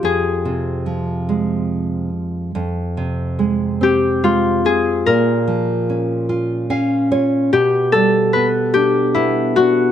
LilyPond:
<<
  \new Staff \with { instrumentName = "Harp" } { \time 6/8 \key f \minor \tempo 4. = 48 aes'2 r4 | r4. g'8 f'8 aes'8 | bes'2 r4 | g'8 a'8 b'8 g'8 e'8 ges'8 | }
  \new Staff \with { instrumentName = "Nylon-string guitar" } { \time 6/8 \key f \minor f,8 c8 f8 aes4. | f,8 c8 aes8 c'8 aes8 c'8 | bes,8 f8 des'8 f'8 <des' f''>8 <f' des''>8 | b,8 g8 b8 d'8 b8 d'8 | }
>>